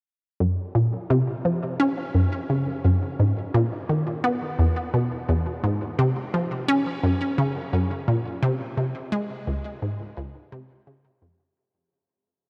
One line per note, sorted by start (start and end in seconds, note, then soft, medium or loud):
0.40 0.58 F#2 medium
0.75 0.93 A#2 medium
1.10 1.21 C3 medium
1.45 1.72 F3 medium
1.80 2.06 C#4 loud
2.15 2.25 F#2 medium
2.50 2.67 C#3 medium
2.85 3.02 F#2 medium
3.20 3.37 G#2 medium
3.54 3.65 A#2 medium
3.89 4.16 D#3 medium
4.24 4.51 B3 medium
4.59 4.70 E2 medium
4.94 5.12 B2 medium
5.29 5.46 E2 medium
5.64 5.81 G#2 medium
5.99 6.09 C3 loud
6.34 6.60 F3 medium
6.68 6.95 C#4 loud
7.03 7.14 F#2 medium
7.38 7.56 C#3 medium
7.73 7.91 F#2 medium
8.08 8.26 A#2 medium
8.43 8.53 C3 loud
8.77 9.04 C3 medium
9.12 9.39 G#3 loud
9.47 9.58 C#2 medium
9.82 10.00 G#2 medium
10.17 10.35 C#2 medium
10.52 10.70 C3 loud
10.87 11.05 C#3 medium
11.22 11.49 F2 medium